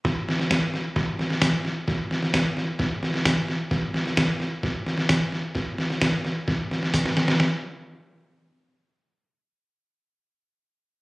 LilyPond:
\new DrumStaff \with { instrumentName = "Drums" } \drummode { \time 4/4 \tempo 4 = 131 <bd sn>8 sn16 sn16 <hhp bd sn>8 sn8 <bd sn>8 sn16 sn16 <hhp bd sn>8 sn8 | <bd sn>8 sn16 sn16 <hhp bd sn>8 sn8 <bd sn>8 sn16 sn16 <hhp bd sn>8 sn8 | <bd sn>8 sn16 sn16 <hhp bd sn>8 sn8 <bd sn>8 sn16 sn16 <hhp bd sn>8 sn8 | <bd sn>8 sn16 sn16 <hhp bd sn>8 sn8 <bd sn>8 sn16 sn16 <hhp bd sn>16 sn16 sn16 sn16 |
sn4 r4 r4 r4 | r4 r4 r4 r4 | }